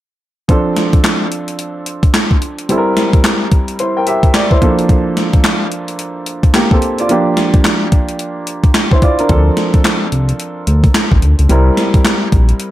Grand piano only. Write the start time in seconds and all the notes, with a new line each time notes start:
0.48 F3 C4 D4 A4
2.69 G3 C4 E4 A4
2.78 A#4
3.80 E4 C5
3.97 A#4 G5
4.07 G4 E5
4.34 D5
4.51 E4 C5
4.61 F3 A#3 D4 A4
6.55 A#3 G4
6.72 C4 A4
7.00 F4 D5
7.09 F3 A#3 D4 G4
8.92 E4 C5
9.03 F4 D5
9.20 D4 A#4
9.29 F3 C4 D4 A4
11.49 G3 C4 E4 A#4